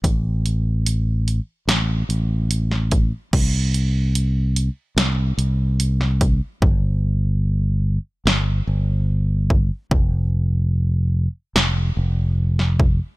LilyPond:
<<
  \new Staff \with { instrumentName = "Fingered electric bass" } { \clef bass \time 4/4 \key a \minor \tempo 4 = 73 a,,2 a,,8 a,,4. | c,2 c,8 c,4. | g,,2 g,,8 g,,4. | f,,2 f,,8 f,,4. | }
  \new DrumStaff \with { instrumentName = "Drums" } \drummode { \time 4/4 <hh bd>8 hh8 hh8 hh8 <hh sn>8 hh8 hh16 sn16 <hh bd>8 | <cymc bd>8 hh8 hh8 hh8 <hh sn>8 hh8 hh16 sn16 <hh bd>8 | bd4 r4 sn4 r8 bd8 | bd4 r4 sn4 r16 sn16 bd8 | }
>>